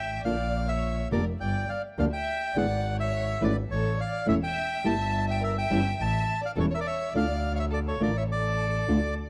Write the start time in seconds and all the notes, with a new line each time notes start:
Already playing: G#1 E5 G5
0.24 A#1 D3 A#3 D4 F4 D5 F5
0.68 C#5 E5
1.11 F1 D3 F3 A#3 D4 G4 A#4 D5
1.40 G1 D5 G5
1.68 D5 F5
1.98 D2 D3 F3 A#3 D4 G4 D5 F5
2.13 E5 G5
2.56 G#1 D3 G#3 B3 E4 G#4 D5 F#5
2.99 C#5 E5
3.41 G#1 E3 A3 C#4 E4 B4 D5
3.70 A1 A4 C#5
4.00 D5 F5
4.26 E1 E3 A3 C#4 E4 C#5 E5
4.43 E5 G5
4.84 G1 G3 A#3 E4 G4 E5 A5
5.28 E5 G5
5.43 A#4 E5
5.58 E5 G5
5.70 G1 E3 G3 C#4 E4
5.99 A1 E5 A5
6.43 D5 F5
6.56 E1 E3 G3 C#4 E4 A4 C#5
6.71 C#5 E5
6.76 A#4
6.81 D5
6.85 C#5 E5
7.14 D2 D3 A3 D4 F4 D5 F5
7.53 C#5 D5 F5
7.59 E5
7.71 A4 D5
7.88 A4 C#5
8.00 A1 D3 A3 D4 F4 A#4 D5
8.17 C#5 E5
8.31 A4 D5
8.87 D2 D3 A3 D4 F4